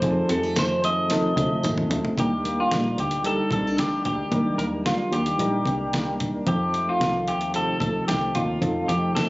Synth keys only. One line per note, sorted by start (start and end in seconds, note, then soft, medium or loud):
0.00 1.09 F3 medium
0.00 0.02 C4 medium
0.00 0.93 C4 medium
0.00 0.02 D#4 medium
0.00 0.93 D#4 medium
0.00 2.18 G#4 medium
0.00 0.10 A4 medium
0.10 0.97 A4 medium
1.09 2.00 F3 medium
1.09 2.01 C4 medium
1.09 2.01 D#4 medium
1.09 2.01 A4 medium
2.16 3.07 G3 medium
2.16 3.08 D4 medium
2.16 3.08 D#4 medium
2.16 3.09 A#4 medium
3.23 4.15 G3 medium
3.23 4.15 D4 medium
3.23 4.15 D#4 medium
3.23 4.16 A#4 medium
4.31 4.38 F#3 soft
4.31 5.23 D4 medium
4.31 5.23 D#4 medium
4.31 5.23 A#4 medium
4.37 5.26 G3 medium
5.38 6.30 G3 medium
5.38 6.30 D4 medium
5.38 6.30 D#4 medium
5.38 6.31 A#4 medium
6.46 7.37 F3 medium
6.46 7.38 C4 medium
6.46 7.38 D#4 medium
6.46 7.39 A4 medium
7.53 8.45 F3 medium
7.53 8.45 C4 medium
7.53 8.46 D#4 medium
7.53 8.46 A4 medium
8.60 9.29 F3 medium
8.60 9.29 C4 medium
8.60 9.29 D#4 medium
8.60 9.29 A4 medium